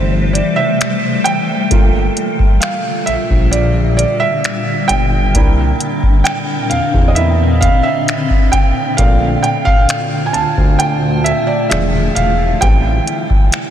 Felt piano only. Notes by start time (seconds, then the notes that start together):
Already playing: G3 C4 E4 C5 E5
0.33 D5
0.56 E5
1.24 G5
1.71 A3 A#3 F4
2.60 F5
3.06 E5
3.51 D5
3.97 D5
4.20 E5
4.88 G5
5.34 A#3 D4 E4
6.24 G5
6.70 F5
7.08 D#5
7.15 A#3 D4 E4 E5
7.61 F5
7.83 E5
8.52 G5
8.97 A3 C4 D4 F5
9.43 G5
9.65 F5
10.26 G#5
10.33 A5
10.79 G5
11.24 E5
11.47 D5
11.70 F3 G#3 D4 E5
12.15 F5
12.61 E3 G3 C4 G5